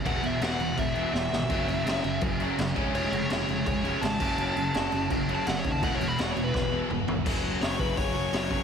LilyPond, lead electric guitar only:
\new Staff \with { instrumentName = "Lead electric guitar" } { \time 4/4 \key e \mixolydian \tempo 4 = 166 fis''8 e''8 fis''4 e''4 e''4~ | e''2 r2 | cis''8 cis''8 cis''4 cis''4 a''4~ | a''2 \tuplet 3/2 { r4 a''8 fis''8 cis''8 a''8 } |
\tuplet 3/2 { fis''8 cis''8 b''8 fis''8 cis''8 b'8~ } b'8 r4. | r4 cis''8 b'8 cis''2 | }